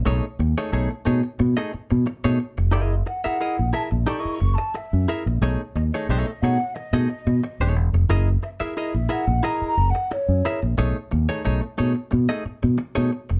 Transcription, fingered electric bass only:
X:1
M:4/4
L:1/16
Q:1/4=90
K:B
V:1 name="Fingered electric bass" clef=bass
B,,, z D,, z B,,, z B,, z B,, z2 B,, z B,, z ^E,,, | F,,,2 z3 A,,, z A,,, z2 F,,, z2 F,, z A,,, | B,,, z D,, z B,,, z B,, z2 B,, z B,, z D,,, E,,, ^E,,, | F,,,2 z3 A,,, z A,,, z2 F,,, z2 F,, z A,,, |
B,,, z D,, z B,,, z B,, z B,, z2 B,, z B,, z ^E,,, |]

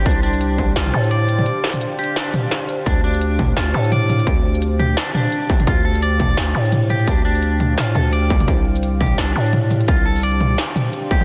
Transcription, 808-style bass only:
X:1
M:4/4
L:1/8
Q:"Swing 16ths" 1/4=171
K:Dm
V:1 name="808-style bass" clef=bass
C,,4 C,, A,,3 | z8 | D,,4 D,, A,,3 | D,,4 z4 |
D,,4 D,, A,,3 | D,,4 A,, D,,3 | C,,4 C,, A,,3 | C,,4 z4 |]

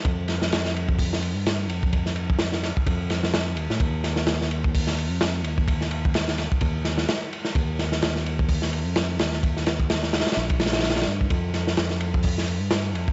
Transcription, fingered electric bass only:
X:1
M:4/4
L:1/16
Q:"Swing 16ths" 1/4=128
K:Eblyd
V:1 name="Fingered electric bass" clef=bass
F,,8- F,,3 G,,3 F,,2- | F,,6- F,, z F,,6 E,, A,, | E,,8- E,,3 F,,3 E,,2- | E,,6- E,, z E,,4 z4 |
E,,8- E,,3 F,,3 E,,2- | E,,6- E,, z B,,,6 G,,2 | F,,8- F,,3 G,,3 F,,2 |]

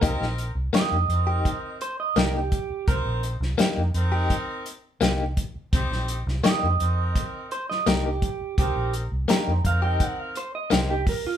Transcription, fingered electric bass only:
X:1
M:4/4
L:1/16
Q:1/4=84
K:Cm
V:1 name="Fingered electric bass" clef=bass
C,, B,,,2 C,, z F,, F,,2 z4 C,,2 z2 | C,, B,,,2 C,, z F,, F,,2 z4 C,,2 z2 | C,, B,,,2 C,, z F,, F,,2 z4 C,,2 z2 | C,, B,,,2 C,, z F,, F,,2 z4 C,,2 z2 |]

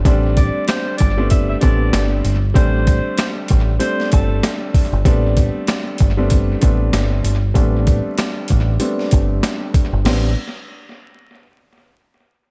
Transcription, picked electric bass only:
X:1
M:4/4
L:1/16
Q:"Swing 16ths" 1/4=96
K:Am
V:1 name="Picked electric bass" clef=bass
A,,,3 z3 G,,,4 A,,,2 G,,,2 G,,,2 | A,,,3 z3 A,,,2 z2 G,,,2 z3 G,,, | A,,,3 z3 G,,,4 A,,,2 G,,,2 G,,,2 | A,,,3 z3 A,,,2 z2 G,,,2 z3 G,,, |
A,,,2 z12 z2 |]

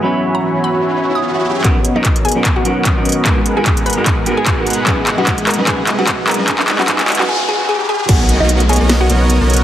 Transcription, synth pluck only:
X:1
M:4/4
L:1/16
Q:"Swing 16ths" 1/4=149
K:B
V:1 name="Synth pluck"
z3 a2 z b2 z3 d'4 z | [Ff]2 z [Dd]2 z [Gg]2 z [Ff]2 z4 z | z3 [Gg]2 z [Bb]2 z3 [Gg]4 z | [Gg]2 z [Ff]2 z [Aa]2 [Gg]2 z [Ff]2 z [Aa]2 |
[Gg]2 z [Ff] [Gg]2 z [Ff] [Gg]2 [Gg]2 [Gg]2 [Gg]2 | [Ff]2 z [Dd]2 z [Gg]2 z [Ff]2 z4 z |]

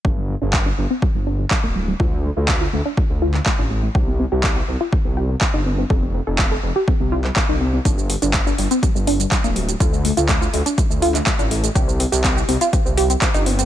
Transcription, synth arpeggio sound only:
X:1
M:4/4
L:1/16
Q:1/4=123
K:Dphr
V:1 name="Synth arpeggio sound"
D G, G, D G, D G, C G, G, D G, G, B, G, G, | F A, A, F A, F A, D A, A, F A, A, D A, A, | G C C G C G C F C C G C C E C C | A C C A C A C G C C F C C E C C |
D G, G, D G, D G, C G, G, D G, G, B, G, G, | F A, A, F A, F A, D A, A, F A, A, D A, A, | G C C G C G C F C C G C C E C C |]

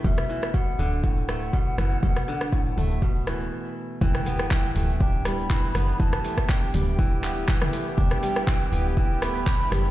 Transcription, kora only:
X:1
M:4/4
L:1/8
Q:"Swing 16ths" 1/4=121
K:Em
V:1 name="Kora" clef=bass
B,, E, B,, D, A,, A, B,, E, | B,, D, A,, A, B,, E, z2 | E, B, E, A, D G, E, B, | E, A, D G, E, B, E, A, |
D G, E, B, E, A, D G, |]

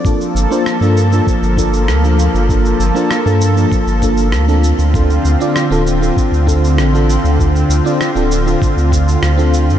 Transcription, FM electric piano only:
X:1
M:4/4
L:1/16
Q:1/4=98
K:Gm
V:1 name="FM electric piano"
[B,DFA]3 [B,DFc]2 [B,DFA]2 [B,DFA] z2 [B,DFA]2 z [B,DFA]3 | [B,DFA]3 [B,DFc]2 [B,DFA]2 [B,DFA] z2 [B,DFA]2 z [CDFA]3 | [CDFA]3 [CDFd]2 [CDFA]2 [CDFA] z2 [CDFA]2 z [CDFA]3 | [CDFA]3 [CDFd]2 [CDFA]2 [CDFA] z4 z [CDFA]3 |]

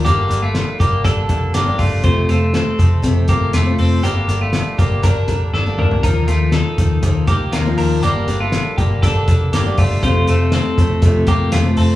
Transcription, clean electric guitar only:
X:1
M:4/4
L:1/16
Q:1/4=120
K:Gm
V:1 name="Clean electric guitar"
[B,G]3 [A,F]3 [B,G]2 [DA]4 [B,G]2 [A,F]2 | [Fc]2 [A,F]2 [CA]6 [B,G]2 [A,F]2 [CA]2 | [B,G]3 [A,F]3 [B,G]2 [DB]4 [DA]2 [DB]2 | [EB]2 [A,F]2 [EA]6 [B,G]2 [B,F]2 [DB]2 |
[B,G]3 [A,F]3 [B,G]2 [DA]4 [B,G]2 [A,F]2 | [Fc]2 [A,F]2 [CA]6 [B,G]2 [A,F]2 [CA]2 |]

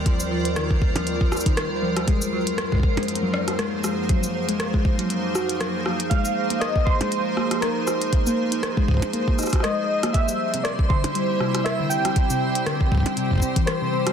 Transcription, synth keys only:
X:1
M:4/4
L:1/8
Q:"Swing 16ths" 1/4=119
K:Ablyd
V:1 name="Synth keys"
z8 | z8 | z8 | f2 e c3 B c- |
c6 e2 | =e2 d c3 e g- | g6 c2 |]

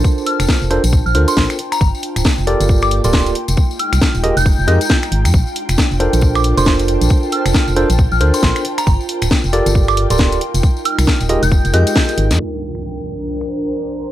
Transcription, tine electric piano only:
X:1
M:4/4
L:1/16
Q:"Swing 16ths" 1/4=136
K:Bb
V:1 name="Tine electric piano"
[DFABc]6 [DFABc] z3 [DFABc]4 z2 | z6 [FGABd]4- [FGABd] [FGABd]3 z2 | z6 [FG_ABe] z3 [FGABe] z4 z | z6 [DFABc]4- [DFABc] [DFABc]4- [DFABc]- |
[DFABc]6 [DFABc] z3 [DFABc]4 z2 | z6 [FGABd]4- [FGABd] [FGABd]3 z2 | z6 [FG_ABe] z3 [FGABe]6 | z16 |]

